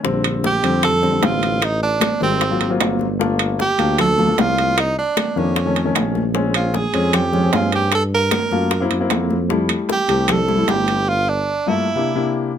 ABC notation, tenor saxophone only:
X:1
M:4/4
L:1/8
Q:1/4=152
K:Bblyd
V:1 name="Tenor saxophone"
z2 G2 A2 F2 | _E D2 C3 z2 | z2 G2 A2 F2 | _E D2 _D3 z2 |
z F _A2 G2 F G | A B4 z3 | z2 G2 A2 G2 | F D2 E4 z |]